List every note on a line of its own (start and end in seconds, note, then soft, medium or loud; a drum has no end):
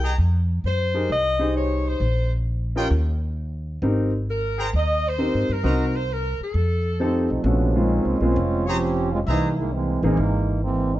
0.00 0.14 C2 medium
0.00 0.14 G#4 medium
0.00 0.14 D#5 medium
0.00 0.10 G5 medium
0.00 0.14 A#5 medium
0.04 0.14 G5 medium
0.18 0.61 F2 medium
0.64 1.06 F#2 medium
0.64 1.07 C5 medium
0.94 1.08 D#4 medium
0.94 1.08 G4 medium
0.94 1.08 G#4 medium
0.94 1.08 A#4 medium
1.09 1.96 C2 medium
1.09 1.53 D#5 loud
1.39 1.97 D#4 medium
1.39 1.97 G4 medium
1.39 1.98 G#4 medium
1.39 1.98 C5 medium
1.57 1.87 C#5 medium
1.87 2.32 C5 medium
2.00 2.87 A#1 medium
2.76 2.89 C#4 medium
2.76 2.89 F4 medium
2.76 2.86 F4 medium
2.76 2.90 G4 medium
2.76 2.90 A#4 medium
2.76 2.86 C#5 medium
2.76 2.86 D#5 medium
2.76 2.86 G5 loud
2.90 3.78 D#2 medium
3.82 4.69 G#1 medium
3.82 4.10 C4 medium
3.82 4.10 D#4 medium
3.82 4.10 G4 medium
3.82 4.10 A#4 medium
4.30 4.71 A#4 medium
4.58 4.68 G#4 medium
4.58 4.68 C5 medium
4.58 4.68 G5 medium
4.58 4.68 A#5 loud
4.73 5.30 D#2 medium
4.73 5.05 D#5 loud
5.08 5.51 C5 loud
5.18 5.46 C4 medium
5.18 5.46 D#4 medium
5.18 5.46 G4 medium
5.18 5.46 A#4 medium
5.34 5.48 G#2 medium
5.49 5.63 G2 medium
5.49 5.96 A#4 medium
5.64 6.36 C2 medium
5.64 5.91 C4 medium
5.64 5.92 D#4 soft
5.64 5.85 F#4 medium
5.64 5.92 F#4 soft
5.64 5.92 A#4 medium
5.64 5.84 C5 medium
5.64 5.84 D#5 medium
5.64 5.85 A#5 medium
5.95 6.10 C5 medium
6.12 6.41 A#4 medium
6.40 7.28 A4 medium
6.40 muted upright bass stroke soft
6.54 7.26 F2 medium
7.00 7.28 D#3 medium
7.00 7.28 F3 medium
7.00 7.28 A3 medium
7.00 7.27 C4 medium
7.00 7.28 C4 medium
7.00 7.27 D#4 medium
7.00 7.28 G4 medium
7.00 7.28 A4 medium
7.30 7.43 B1 medium
7.30 7.44 F3 medium
7.30 7.45 A3 medium
7.30 7.45 C4 medium
7.30 7.45 D#4 medium
7.44 8.01 A#1 medium
7.44 7.76 C3 medium
7.44 7.76 F3 medium
7.44 7.75 G#3 medium
7.44 7.73 A3 medium
7.44 7.73 B3 medium
7.44 7.75 C#4 medium
7.44 7.73 C#4 medium
7.44 7.73 D4 medium
7.44 7.73 F#4 medium
7.76 8.15 G#3 medium
7.76 8.20 G#3 medium
7.76 8.15 A#3 soft
7.76 8.15 C4 soft
7.76 8.20 C4 medium
7.76 8.21 C#4 medium
7.76 8.15 C#4 soft
7.76 8.21 D#4 medium
7.76 8.15 F4 medium
8.05 8.19 C2 medium
8.20 8.35 B1 medium
8.20 8.34 G#3 medium
8.20 8.67 G#3 medium
8.20 8.35 A#3 medium
8.20 8.67 C4 medium
8.20 8.35 C4 medium
8.20 8.66 C#4 medium
8.20 8.35 C#4 medium
8.20 8.67 F4 loud
8.20 8.35 F4 medium
8.36 9.23 F1 medium
8.66 9.12 F3 loud
8.66 9.12 C4 medium
8.66 9.12 C#4 medium
8.66 9.13 G4 loud
8.66 8.76 G#4 loud
8.66 8.77 C5 medium
8.66 8.77 C#5 medium
8.66 8.77 A#5 loud
9.13 9.19 G#3 medium
9.13 9.19 C4 medium
9.13 9.19 C#4 medium
9.13 9.19 F4 loud
9.27 9.99 C2 medium
9.27 9.56 E3 medium
9.27 9.56 G#3 medium
9.27 9.56 A#3 medium
9.27 9.56 D#4 loud
9.27 9.48 G#4 medium
9.27 9.48 C5 medium
9.27 9.48 E5 medium
9.27 9.48 A#5 loud
9.57 9.72 D#3 medium
9.57 9.72 G#3 medium
9.57 9.71 A#3 medium
9.57 9.72 E4 medium
9.73 10.02 E3 medium
9.73 10.03 G#3 medium
9.73 10.03 A#3 medium
9.73 10.03 C4 loud
10.03 10.16 A#1 medium
10.03 10.16 E3 medium
10.03 10.59 E3 medium
10.03 10.59 G#3 medium
10.03 10.16 A#3 medium
10.03 10.59 A#3 medium
10.03 10.16 C4 medium
10.03 10.59 D#4 medium
10.03 10.17 D#4 medium
10.03 10.17 G#4 medium
10.17 11.00 G#1 medium
10.64 10.94 E3 medium
10.64 10.93 G#3 medium
10.64 10.93 A#3 medium
10.64 10.94 C4 medium
10.94 11.00 E3 medium
10.94 11.00 G#3 medium
10.94 11.00 A#3 medium
10.94 11.00 D#4 medium